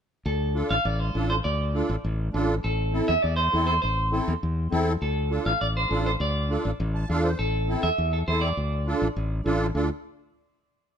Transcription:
0.26 0.61 D2 medium
0.26 0.72 A4 medium
0.55 0.76 D4 medium
0.55 0.76 F4 medium
0.55 0.76 A4 medium
0.70 0.76 A1 medium
0.70 0.85 F5 loud
0.85 1.09 A1 medium
0.85 1.00 D5 loud
1.00 1.29 C5 medium
1.15 1.39 A1 medium
1.15 1.36 D4 medium
1.15 1.36 F4 medium
1.15 1.36 A4 medium
1.30 1.35 C5 medium
1.44 1.81 D2 medium
1.44 1.89 D5 medium
1.74 1.95 D4 medium
1.74 1.95 F4 medium
1.74 1.96 A4 medium
1.89 1.95 A1 loud
2.04 2.28 A1 medium
2.33 2.58 A1 medium
2.33 2.55 D4 medium
2.33 2.55 F4 medium
2.33 2.55 A4 medium
2.64 3.00 A1 medium
2.64 3.06 A4 medium
2.93 3.14 C4 medium
2.93 3.14 E4 medium
2.93 3.14 A4 medium
3.08 3.15 E2 medium
3.08 3.22 E5 loud
3.22 3.48 E2 medium
3.22 3.36 D5 medium
3.36 3.66 C5 medium
3.53 3.77 E2 medium
3.53 3.74 C4 medium
3.53 3.74 E4 medium
3.53 3.74 A4 medium
3.67 3.81 C5 medium
3.82 4.19 A1 medium
3.82 4.24 C5 medium
4.12 4.33 C4 medium
4.12 4.33 E4 medium
4.12 4.34 A4 medium
4.28 4.34 E2 medium
4.43 4.67 E2 medium
4.71 4.96 E2 loud
4.71 4.93 C4 medium
4.71 4.93 E4 medium
4.71 4.93 A4 loud
5.02 5.37 D2 medium
5.02 5.44 A4 medium
5.30 5.52 D4 medium
5.30 5.52 F4 medium
5.30 5.52 A4 medium
5.46 5.52 A1 loud
5.46 5.60 F5 loud
5.61 5.85 A1 medium
5.61 5.66 D5 medium
5.77 6.04 C5 medium
5.90 6.15 A1 medium
5.90 6.11 D4 medium
5.90 6.12 F4 medium
5.90 6.12 A4 medium
6.06 6.11 C5 medium
6.20 6.56 D2 medium
6.20 6.62 D5 medium
6.50 6.71 D4 medium
6.50 6.71 F4 medium
6.50 6.71 A4 medium
6.65 6.71 A1 medium
6.80 7.03 A1 loud
6.95 7.08 A5 medium
7.09 7.33 E2 loud
7.09 7.30 D4 medium
7.09 7.30 F4 medium
7.09 7.30 A4 medium
7.09 7.23 F5 medium
7.24 7.38 C5 medium
7.39 7.74 A1 medium
7.39 7.80 A4 medium
7.68 7.89 C4 medium
7.68 7.90 E4 medium
7.68 7.90 A4 medium
7.83 7.89 E2 loud
7.83 8.11 E5 loud
7.98 8.22 E2 loud
8.13 8.18 A4 medium
8.28 8.51 E2 medium
8.28 8.48 C4 medium
8.28 8.49 E4 medium
8.28 8.49 A4 medium
8.28 8.41 C5 medium
8.41 9.41 D5 medium
8.57 8.93 D2 medium
8.87 9.07 D4 medium
8.87 9.08 F4 medium
8.87 9.08 A4 medium
9.02 9.08 A1 loud
9.16 9.40 A1 medium
9.46 9.69 A1 medium
9.46 9.66 D4 medium
9.46 9.67 F4 medium
9.46 9.67 A4 medium
9.75 9.89 D2 medium
9.75 9.89 D4 medium
9.75 9.89 F4 medium
9.75 9.89 A4 medium

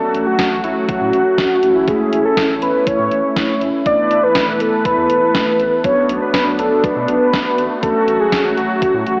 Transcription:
0.00 1.61 F#3 medium
0.00 1.60 A3 medium
0.00 3.82 A3 medium
0.00 1.60 C#4 medium
0.00 1.60 F#4 medium
0.00 1.61 F#4 medium
0.00 0.24 A4 loud
0.14 0.24 A1 loud
0.14 closed hi-hat medium
0.27 0.61 F#4 medium
0.39 kick loud
0.39 snare loud
0.39 closed hi-hat medium
0.51 0.61 A1 loud
0.64 0.74 A1 loud
0.64 0.75 E4 medium
0.64 closed hi-hat medium
0.88 0.99 A1 loud
0.88 1.90 F#4 loud
0.88 kick loud
0.88 closed hi-hat medium
1.01 1.11 A2 loud
1.13 1.23 A1 medium
1.13 closed hi-hat medium
1.38 1.48 A1 loud
1.38 kick loud
1.38 snare medium
1.38 closed hi-hat medium
1.63 1.93 A1 loud
1.63 3.82 A3 medium
1.63 3.82 C#4 medium
1.63 3.84 C#4 medium
1.63 3.82 E4 medium
1.63 5.80 E4 medium
1.63 closed hi-hat medium
1.88 2.25 G#4 loud
1.88 kick loud
1.88 closed hi-hat medium
2.13 2.23 A1 loud
2.13 closed hi-hat medium
2.25 2.60 A4 loud
2.37 kick loud
2.37 snare loud
2.37 closed hi-hat medium
2.50 2.60 A1 medium
2.62 2.72 A1 loud
2.62 2.89 B4 loud
2.62 closed hi-hat medium
2.87 2.97 A1 loud
2.87 3.61 C#5 loud
2.87 kick loud
2.87 closed hi-hat medium
2.99 3.09 A2 medium
3.12 3.22 A1 medium
3.12 closed hi-hat medium
3.36 3.47 A1 loud
3.36 kick loud
3.36 snare loud
3.36 closed hi-hat medium
3.61 3.71 F#1 medium
3.61 closed hi-hat medium
3.86 3.96 E1 loud
3.86 5.82 E3 medium
3.86 5.80 A3 medium
3.86 5.80 B3 medium
3.86 5.80 E4 medium
3.86 5.82 A4 medium
3.86 5.82 B4 medium
3.86 4.25 D5 loud
3.86 kick loud
3.86 closed hi-hat medium
4.11 4.21 E1 loud
4.11 closed hi-hat medium
4.24 4.62 B4 loud
4.36 kick loud
4.36 snare loud
4.36 closed hi-hat medium
4.48 4.58 E1 loud
4.60 4.71 E1 medium
4.60 4.85 A4 medium
4.60 closed hi-hat medium
4.85 4.95 E1 loud
4.85 5.86 B4 loud
4.85 kick loud
4.85 closed hi-hat medium
4.98 5.08 E2 loud
5.10 5.20 E1 loud
5.10 closed hi-hat medium
5.35 5.45 E1 loud
5.35 kick loud
5.35 snare loud
5.35 closed hi-hat medium
5.60 5.70 A1 medium
5.60 closed hi-hat medium
5.84 5.94 B1 loud
5.84 9.20 A3 medium
5.84 7.81 B3 medium
5.84 7.79 B3 medium
5.84 7.81 D4 medium
5.84 7.79 D4 medium
5.84 7.79 F#4 medium
5.84 6.21 C#5 loud
5.84 kick loud
5.84 closed hi-hat medium
6.09 6.19 B1 loud
6.09 closed hi-hat medium
6.22 6.61 B4 loud
6.34 kick loud
6.34 snare loud
6.34 closed hi-hat medium
6.46 6.57 B1 loud
6.59 6.69 B1 medium
6.59 6.85 A4 medium
6.59 closed hi-hat medium
6.84 6.94 B1 loud
6.84 7.82 B4 loud
6.84 kick loud
6.84 closed hi-hat medium
6.96 7.06 B2 medium
7.08 7.19 B1 medium
7.08 closed hi-hat medium
7.33 7.43 B1 medium
7.33 kick loud
7.33 snare loud
7.33 closed hi-hat medium
7.58 7.68 G#1 medium
7.58 closed hi-hat medium
7.83 7.93 A1 loud
7.83 9.20 F#3 medium
7.83 9.20 A3 medium
7.83 9.20 C#4 medium
7.83 9.20 F#4 medium
7.83 8.22 A4 loud
7.83 kick loud
7.83 closed hi-hat medium
8.08 8.18 A1 medium
8.08 closed hi-hat medium
8.20 8.59 G#4 medium
8.32 kick loud
8.32 snare loud
8.32 closed hi-hat medium
8.45 8.55 A1 loud
8.57 8.67 A1 loud
8.57 9.06 F#4 medium
8.57 closed hi-hat medium
8.82 8.92 A1 loud
8.82 kick loud
8.82 closed hi-hat medium
8.94 9.04 A2 loud
9.07 9.17 A1 medium
9.07 9.20 F#4 medium
9.07 closed hi-hat medium

